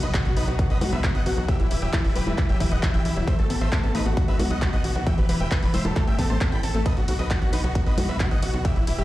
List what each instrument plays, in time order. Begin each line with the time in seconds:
Already playing: string section F#3 B3 D#4, impact
0.03 analog synth bass B1, synth arpeggio sound B2, supersaw synth B4 D#5, closed hi-hat
0.14 synth arpeggio sound B2, supersaw synth F#4, kick, clap, closed hi-hat
0.25 analog synth bass B1, synth arpeggio sound B2, supersaw synth F#4, closed hi-hat
0.36 analog synth bass B1, synth arpeggio sound B2, supersaw synth D#4 B4, open hi-hat
0.48 analog synth bass B1, synth arpeggio sound B2, supersaw synth F#4, closed hi-hat
0.59 synth arpeggio sound B2, supersaw synth F#4, kick, closed hi-hat
0.70 analog synth bass B1, synth arpeggio sound B2, supersaw synth B4 D#5, closed hi-hat
0.81 analog synth bass B1, synth arpeggio sound B2, supersaw synth F#4, open hi-hat, high conga
0.92 analog synth bass B1, synth arpeggio sound B2, supersaw synth B4 E5, closed hi-hat
1.04 synth arpeggio sound B2, supersaw synth F#4, kick, clap, closed hi-hat
1.15 analog synth bass B1, synth arpeggio sound B2, supersaw synth D#5 F#5, closed hi-hat
1.26 analog synth bass A1, synth arpeggio sound B2, supersaw synth F#4, open hi-hat
1.37 analog synth bass B1, synth arpeggio sound B2, supersaw synth F#4
1.48 string section E3 E4 G4 B4, synth arpeggio sound F#3, supersaw synth G4 E5, kick, closed hi-hat
1.60 analog synth bass E1, synth arpeggio sound E3, supersaw synth E4, closed hi-hat
1.71 analog synth bass E1, synth arpeggio sound E3, supersaw synth E4, open hi-hat
1.82 analog synth bass E1, synth arpeggio sound F#3, supersaw synth G4 E5, closed hi-hat
1.93 synth arpeggio sound E3, supersaw synth E4, kick, clap, closed hi-hat
2.04 analog synth bass E1, synth arpeggio sound E3, supersaw synth E4, open hi-hat
2.16 analog synth bass E1, synth arpeggio sound F#3, supersaw synth G4 B4, open hi-hat
2.27 analog synth bass E1, synth arpeggio sound E3, supersaw synth E4, closed hi-hat, high conga
2.38 synth arpeggio sound E3, supersaw synth E4, kick, clap, closed hi-hat
2.49 analog synth bass E1, synth arpeggio sound F#3, supersaw synth G4 E5, closed hi-hat
2.60 analog synth bass E1, synth arpeggio sound E3, supersaw synth E4, kick, open hi-hat
2.72 analog synth bass E1, synth arpeggio sound E3, supersaw synth D#5 F#5, closed hi-hat
2.83 synth arpeggio sound F#3, supersaw synth E4, kick, clap, closed hi-hat
2.94 analog synth bass E1, synth arpeggio sound E3, supersaw synth E5 G5, closed hi-hat
3.05 analog synth bass B1, synth arpeggio sound E3, supersaw synth E4, open hi-hat
3.16 analog synth bass E1, synth arpeggio sound F#3, supersaw synth E4
3.27 string section A3 C4, synth arpeggio sound A3, supersaw synth C5 E5, kick, closed hi-hat
3.39 analog synth bass A1, synth arpeggio sound A3, supersaw synth A4, closed hi-hat
3.50 analog synth bass A1, synth arpeggio sound B3, supersaw synth A4, open hi-hat
3.61 analog synth bass A1, synth arpeggio sound A3, supersaw synth C5 E5, closed hi-hat
3.72 synth arpeggio sound A3, supersaw synth A4, kick, clap, closed hi-hat
3.83 analog synth bass A1, synth arpeggio sound B3, supersaw synth A4, closed hi-hat
3.95 analog synth bass A1, synth arpeggio sound A3, supersaw synth D#4 B4, open hi-hat
4.06 analog synth bass A1, synth arpeggio sound A3, supersaw synth F#4, closed hi-hat
4.17 synth arpeggio sound B2, string section B3 D#4 F#4, supersaw synth F#4, kick, closed hi-hat
4.28 analog synth bass B1, synth arpeggio sound B2, supersaw synth B4 E5, closed hi-hat
4.39 analog synth bass B1, synth arpeggio sound B2, supersaw synth F#4, open hi-hat, high conga
4.50 analog synth bass B1, synth arpeggio sound B2, supersaw synth D#5 F#5
4.62 synth arpeggio sound B2, supersaw synth F#4, kick, clap, closed hi-hat
4.73 analog synth bass B1, synth arpeggio sound B2, supersaw synth D#5 F#5, closed hi-hat
4.84 analog synth bass A1, synth arpeggio sound B2, supersaw synth F#4, open hi-hat
4.95 analog synth bass B1, synth arpeggio sound B2, supersaw synth F#4, closed hi-hat
5.07 synth arpeggio sound E3, string section E3 E4 G4 B4, supersaw synth E5 G5, kick, closed hi-hat
5.18 analog synth bass E1, synth arpeggio sound F#3, supersaw synth B4, closed hi-hat
5.29 analog synth bass E1, synth arpeggio sound E3, supersaw synth B4, open hi-hat
5.40 analog synth bass E1, synth arpeggio sound E3, supersaw synth E5 G5, closed hi-hat
5.51 synth arpeggio sound F#3, supersaw synth B4, kick, clap, closed hi-hat
5.63 analog synth bass E1, synth arpeggio sound E3, supersaw synth B4, open hi-hat
5.74 analog synth bass E1, synth arpeggio sound E3, supersaw synth C5 E5, open hi-hat, high conga
5.85 analog synth bass E1, synth arpeggio sound F#3, supersaw synth A4, closed hi-hat, high conga
5.96 string section A3 C4, synth arpeggio sound A3, supersaw synth A4, kick, clap, closed hi-hat
6.07 analog synth bass A1, synth arpeggio sound A3, supersaw synth E5 G5, closed hi-hat
6.19 analog synth bass A1, synth arpeggio sound B3, supersaw synth A4, kick, open hi-hat
6.30 analog synth bass A1, synth arpeggio sound A3, supersaw synth C5 A5
6.41 synth arpeggio sound B3, supersaw synth A4, kick, clap, closed hi-hat
6.52 analog synth bass A1, synth arpeggio sound E4, supersaw synth G5 B5, closed hi-hat
6.63 analog synth bass A1, supersaw synth A4, synth arpeggio sound A4, open hi-hat
6.75 analog synth bass A1, synth arpeggio sound A3, supersaw synth A4, closed hi-hat
6.86 synth arpeggio sound B2, string section B3 D#4 F#4, supersaw synth B4 D#5, kick, closed hi-hat, ride
6.97 analog synth bass B1, synth arpeggio sound B2, supersaw synth F#4, closed hi-hat
7.08 analog synth bass B1, synth arpeggio sound B2, supersaw synth F#4, open hi-hat, ride
7.19 analog synth bass B1, synth arpeggio sound B2, supersaw synth B4 D#5, closed hi-hat
7.30 synth arpeggio sound B2, supersaw synth F#4, kick, clap, closed hi-hat, ride
7.42 analog synth bass B1, synth arpeggio sound B2, supersaw synth F#4, closed hi-hat
7.53 analog synth bass B1, synth arpeggio sound B2, supersaw synth D#4 B4, open hi-hat, ride
7.64 analog synth bass B1, synth arpeggio sound B2, supersaw synth F#4
7.75 synth arpeggio sound B2, supersaw synth F#4, kick, closed hi-hat, ride
7.86 analog synth bass B1, synth arpeggio sound B2, supersaw synth B4 D#5, closed hi-hat
7.98 analog synth bass B1, synth arpeggio sound B2, supersaw synth F#4, open hi-hat, ride, high conga
8.09 analog synth bass B1, synth arpeggio sound B2, supersaw synth B4 E5
8.20 synth arpeggio sound B2, supersaw synth F#4, kick, clap, closed hi-hat, ride
8.31 analog synth bass B1, synth arpeggio sound B2, supersaw synth D#5 F#5, closed hi-hat
8.42 analog synth bass A1, synth arpeggio sound B2, supersaw synth F#4, open hi-hat, ride
8.54 analog synth bass B1, synth arpeggio sound B2, supersaw synth F#4, closed hi-hat
8.65 string section E3 E4 G4 B4, synth arpeggio sound F#3, supersaw synth G4 E5, kick, closed hi-hat, ride
8.76 analog synth bass E1, synth arpeggio sound E3, supersaw synth E4, closed hi-hat
8.87 analog synth bass E1, synth arpeggio sound E3, supersaw synth E4, open hi-hat, ride
8.98 analog synth bass E1, synth arpeggio sound F#3, supersaw synth G4 E5, closed hi-hat